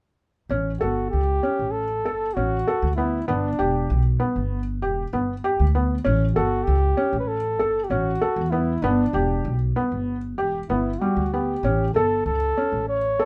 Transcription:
0.49 A1 C#4
0.80 G1 F#4 A4
1.10 C#2 G4
1.43 C#4
1.59 A1
1.71 A4
2.05 G1 A4
2.34 A1 C#4 F#4
2.68 A4
2.82 D2
2.96 B3 E4
3.28 G1 B3 D4
3.59 E1 G4
3.90 B1
4.20 B3
4.36 G1
4.82 E1 G4
5.13 G1 B3
5.44 G4
5.60 D2
5.75 B3
6.05 A1 C#4
6.36 G1 F#4 A4
6.64 C#2 G4
6.97 C#4
7.13 A1
7.20 B4
7.28 A4
7.59 G1 A4
7.84 G4
7.89 A1 C#4 F#4
8.21 A4
8.36 E2
8.51 B3 E4
8.82 G1 B3 D4
9.13 E1 G4
9.45 B1
9.76 B3
9.92 G1
10.37 E1 G4
10.69 G1 B3 E4
10.99 G3 F#4
11.16 D2
11.33 B3 G4
11.63 A1 C#4
11.94 G1 A4
12.26 C#2 A4
12.57 C#4
12.72 A1
12.89 C#5
13.20 G1 A4

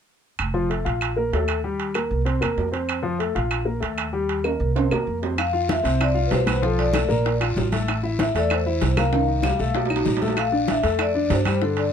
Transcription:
0.39 F1, high timbale, claves
0.54 F3 F4
0.69 A3 A4, high timbale
0.85 A#1 F4 F5, high timbale
1.01 high timbale, claves
1.16 A#3 A#4
1.32 D#2 A3 A4, high timbale, low timbale
1.48 high timbale, claves
1.64 G3 G4
1.80 high timbale
1.94 A#3 A#4, high timbale, claves
2.11 C2
2.25 C4 C5, high timbale
2.41 E2 A#3 A#4, high timbale, claves
2.57 F2, low timbale
2.72 C4 C5, high timbale
2.89 high timbale, claves
3.03 F3 F4
3.19 A3 A4, high timbale
3.35 A#1 F4 F5, high timbale
3.51 high timbale, claves
3.65 A#3 A#4
3.80 D#2 A3 A4, high timbale
3.98 high timbale, claves
4.13 G3 G4
4.29 high timbale
4.44 A#3 A#4, high timbale, claves
4.60 C2
4.75 C4 C5, high timbale
4.91 E2 A#3 A#4, low timbale, claves
5.07 F2
5.22 C4 C5, low timbale
5.38 F5, high bongo, high conga, high timbale, long guiro, claves
5.53 F4 F5, high bongo, high conga
5.69 E5, high bongo, high conga, high timbale, short guiro
5.83 C2 C4 C5, high conga, high timbale, short guiro
6.00 D5, high bongo, high conga, high timbale, long guiro, claves
6.14 F4 F5, high bongo, high conga
6.27 B4
6.31 B1 C5, high bongo, low bongo, high conga, high timbale, low timbale, short guiro
6.46 B3 B4, high conga, high timbale, short guiro, claves
6.62 F3 F4 A4, high bongo, long guiro
6.78 D5, high bongo, high conga, high timbale
6.93 A3 A4, high bongo, high conga, high timbale, short guiro, claves
7.09 A#1 A#3 A#4, high conga, short guiro
7.25 high bongo, high conga, high timbale, long guiro
7.40 F4 F5, high bongo, high conga, high timbale, claves
7.56 A1, high bongo, low bongo, high conga, low timbale, short guiro
7.72 A3 A4, high conga, high timbale, short guiro
7.88 high bongo, high conga, high timbale, long guiro, claves
8.03 E4 E5, high bongo, high conga
8.19 E5, high bongo, high conga, high timbale, short guiro
8.35 E2 A3 A4 D5, high conga, high timbale, short guiro
8.50 C5, high bongo, high conga, high timbale, long guiro, claves
8.66 E4 E5, high bongo, high conga
8.81 C2, high bongo, low bongo, high conga, high timbale, short guiro
8.97 A#3 A#4 F5, high conga, high timbale, short guiro, claves
9.13 D#3 D#4, high bongo, high conga, high timbale, long guiro
9.28 high bongo, high conga
9.43 G3 G4, high bongo, high conga, low timbale, short guiro, claves
9.59 B1 A3 A4, high conga, short guiro
9.75 high bongo, high conga, low timbale, long guiro
9.86 low timbale
9.90 D#4 D#5, high bongo, high conga, claves
9.96 low timbale
10.06 A#1, high bongo, low bongo, high conga, low timbale, short guiro
10.17 low timbale
10.22 A3 A4, high conga, short guiro
10.28 low timbale
10.37 F5, high bongo, high conga, high timbale, long guiro, claves
10.52 D4 D5, high bongo, high conga
10.68 E5, high bongo, high conga, high timbale, short guiro
10.83 F2 A3 A4, high conga, high timbale, short guiro
10.99 D5, high bongo, high conga, high timbale, long guiro, claves
11.14 D4 D5, high bongo, high conga
11.30 G2 C5, high bongo, low bongo, high conga, high timbale, low timbale, short guiro
11.45 G3 G4, high conga, high timbale, short guiro, claves
11.61 D3 D4 A4, high bongo, high conga, long guiro
11.77 D5, high bongo, high conga, high timbale

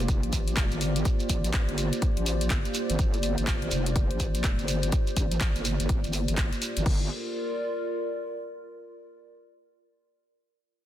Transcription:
Already playing: F1 A#3 F4 G4 C5 D5
0.08 kick, closed hi-hat, shekere
0.23 A1, closed hi-hat
0.33 kick, open hi-hat, shekere
0.47 closed hi-hat, shekere
0.56 kick, clap, closed hi-hat, shekere
0.72 G1, closed hi-hat, shekere
0.81 open hi-hat, shekere
0.96 closed hi-hat, shekere
1.05 kick, closed hi-hat, shekere
1.20 closed hi-hat, shekere
1.29 A1, kick, open hi-hat, shekere
1.44 closed hi-hat, shekere
1.53 kick, clap, closed hi-hat, shekere
1.68 G1, closed hi-hat
1.78 open hi-hat, shekere
1.93 closed hi-hat, shekere
2.02 kick, closed hi-hat, shekere
2.17 A1, closed hi-hat
2.26 open hi-hat, shekere
2.41 closed hi-hat, shekere
2.50 kick, clap, closed hi-hat, shekere
2.65 closed hi-hat, shekere
2.74 open hi-hat, shekere
2.90 G1, closed hi-hat, shekere
2.99 G1, kick, closed hi-hat, shekere
3.13 closed hi-hat, shekere
3.23 open hi-hat, shekere
3.38 G1, closed hi-hat, shekere
3.47 kick, clap, closed hi-hat, shekere
3.62 closed hi-hat
3.71 F1, open hi-hat, shekere
3.86 closed hi-hat, shekere
3.96 kick, closed hi-hat, shekere
4.11 A1, closed hi-hat
4.20 kick, open hi-hat, shekere
4.35 closed hi-hat, shekere
4.44 kick, clap, closed hi-hat, shekere
4.59 G1, closed hi-hat, shekere
4.68 open hi-hat, shekere
4.82 closed hi-hat, shekere
4.92 kick, closed hi-hat, shekere
5.07 closed hi-hat, shekere
5.17 A1, kick, open hi-hat, shekere
5.32 closed hi-hat, shekere
5.41 kick, clap, closed hi-hat, shekere
5.56 G1, closed hi-hat, shekere
5.65 open hi-hat, shekere
5.80 G1, closed hi-hat, shekere
5.89 kick, closed hi-hat, shekere
6.04 G1, closed hi-hat, shekere
6.13 open hi-hat, shekere
6.28 G1, closed hi-hat, shekere
6.38 kick, clap, closed hi-hat, shekere
6.53 closed hi-hat, shekere
6.62 open hi-hat, shekere
6.77 G1, closed hi-hat, shekere
6.86 G1 A#3 F4 G4 A4, kick, crash
6.95 A#4
7.03 D5

